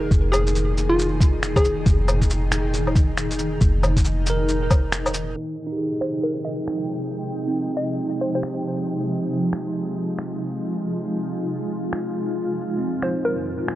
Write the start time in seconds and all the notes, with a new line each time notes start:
Already playing: A#2 D#3 D#4 G#4 A#4
0.11 F1, kick, shaker
0.32 G#4, cabasa, low woodblock
0.47 shaker
0.55 shaker
0.78 cabasa, shaker
0.89 F4
0.99 shaker
1.21 kick, cabasa, shaker
1.43 finger snap, shaker
1.56 G#4, kick, low woodblock, shaker
1.65 cabasa
1.86 F1, kick, shaker
2.08 cabasa, low woodblock
2.22 kick, shaker
2.30 shaker
2.52 finger snap, cabasa, shaker
2.74 shaker
2.87 low woodblock
2.96 kick, cabasa, shaker
3.17 finger snap, shaker
3.31 shaker
3.39 cabasa
3.61 F1, kick, shaker
3.83 cabasa, low woodblock
3.97 kick, shaker
4.04 shaker
4.26 A#4, cabasa, shaker
4.49 shaker
4.71 kick, cabasa, low woodblock, shaker
4.92 finger snap, shaker
5.06 low woodblock, shaker
5.14 cabasa
5.37 C3
5.48 F3
5.55 G5
5.67 D#4
5.72 G4
5.77 G#4
5.94 G#3
6.01 C5, finger snap
6.23 A#4
6.45 D#5
6.68 finger snap
7.48 C4
7.77 D#5
8.21 C5
8.35 G4 C5
8.43 finger snap
9.07 F4
9.53 finger snap
10.19 finger snap
11.93 finger snap
12.37 F2
12.46 A#2
12.51 D#3
12.78 C4
13.02 C5, finger snap
13.25 A#4
13.68 finger snap